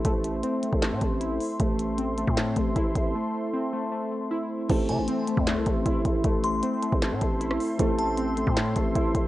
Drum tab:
CC |----------------|----------------|----------------|x---------------|
HH |x-x-x-x-x-x-x-o-|x-x-x-x-x-x-x-x-|----------------|x-x-x-x-x-x-x-x-|
CP |--------x-------|--------x-------|----------------|--------x-------|
SD |--------o-------|--------o-------|----------------|--------o-------|
BD |o------o--o-----|o------o--o-o-o-|----------------|o------o--o-o-o-|

CC |----------------|----------------|
HH |x-x-x-x-x-x-x-o-|x-x-x-x-x-x-x-x-|
CP |--------x-------|--------x-------|
SD |--------o----r--|--------o-------|
BD |o------o--o-----|o------o--o-o-o-|